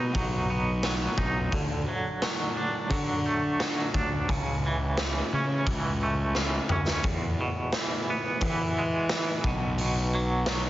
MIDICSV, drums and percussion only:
0, 0, Header, 1, 2, 480
1, 0, Start_track
1, 0, Key_signature, 3, "major"
1, 0, Tempo, 688073
1, 1072, Time_signature, 4, 2, 24, 8
1, 7463, End_track
2, 0, Start_track
2, 0, Title_t, "Drums"
2, 103, Note_on_c, 9, 36, 104
2, 105, Note_on_c, 9, 46, 47
2, 173, Note_off_c, 9, 36, 0
2, 174, Note_off_c, 9, 46, 0
2, 580, Note_on_c, 9, 38, 103
2, 580, Note_on_c, 9, 46, 46
2, 649, Note_off_c, 9, 46, 0
2, 650, Note_off_c, 9, 38, 0
2, 821, Note_on_c, 9, 36, 80
2, 890, Note_off_c, 9, 36, 0
2, 1062, Note_on_c, 9, 46, 49
2, 1063, Note_on_c, 9, 36, 100
2, 1132, Note_off_c, 9, 46, 0
2, 1133, Note_off_c, 9, 36, 0
2, 1548, Note_on_c, 9, 46, 50
2, 1549, Note_on_c, 9, 38, 107
2, 1618, Note_off_c, 9, 46, 0
2, 1619, Note_off_c, 9, 38, 0
2, 2027, Note_on_c, 9, 36, 105
2, 2033, Note_on_c, 9, 46, 53
2, 2097, Note_off_c, 9, 36, 0
2, 2102, Note_off_c, 9, 46, 0
2, 2512, Note_on_c, 9, 38, 107
2, 2512, Note_on_c, 9, 46, 50
2, 2581, Note_off_c, 9, 46, 0
2, 2582, Note_off_c, 9, 38, 0
2, 2751, Note_on_c, 9, 36, 84
2, 2821, Note_off_c, 9, 36, 0
2, 2993, Note_on_c, 9, 36, 99
2, 2994, Note_on_c, 9, 46, 47
2, 3063, Note_off_c, 9, 36, 0
2, 3064, Note_off_c, 9, 46, 0
2, 3470, Note_on_c, 9, 46, 47
2, 3471, Note_on_c, 9, 38, 108
2, 3540, Note_off_c, 9, 46, 0
2, 3541, Note_off_c, 9, 38, 0
2, 3953, Note_on_c, 9, 36, 104
2, 3955, Note_on_c, 9, 46, 48
2, 4023, Note_off_c, 9, 36, 0
2, 4025, Note_off_c, 9, 46, 0
2, 4429, Note_on_c, 9, 38, 56
2, 4499, Note_off_c, 9, 38, 0
2, 4669, Note_on_c, 9, 45, 78
2, 4739, Note_off_c, 9, 45, 0
2, 4795, Note_on_c, 9, 38, 75
2, 4865, Note_off_c, 9, 38, 0
2, 4907, Note_on_c, 9, 46, 44
2, 4912, Note_on_c, 9, 36, 107
2, 4977, Note_off_c, 9, 46, 0
2, 4981, Note_off_c, 9, 36, 0
2, 5389, Note_on_c, 9, 38, 100
2, 5389, Note_on_c, 9, 46, 47
2, 5459, Note_off_c, 9, 38, 0
2, 5459, Note_off_c, 9, 46, 0
2, 5866, Note_on_c, 9, 46, 48
2, 5870, Note_on_c, 9, 36, 98
2, 5936, Note_off_c, 9, 46, 0
2, 5940, Note_off_c, 9, 36, 0
2, 6344, Note_on_c, 9, 46, 50
2, 6345, Note_on_c, 9, 38, 98
2, 6414, Note_off_c, 9, 38, 0
2, 6414, Note_off_c, 9, 46, 0
2, 6586, Note_on_c, 9, 36, 100
2, 6656, Note_off_c, 9, 36, 0
2, 6824, Note_on_c, 9, 46, 48
2, 6894, Note_off_c, 9, 46, 0
2, 7298, Note_on_c, 9, 46, 52
2, 7299, Note_on_c, 9, 38, 108
2, 7368, Note_off_c, 9, 38, 0
2, 7368, Note_off_c, 9, 46, 0
2, 7463, End_track
0, 0, End_of_file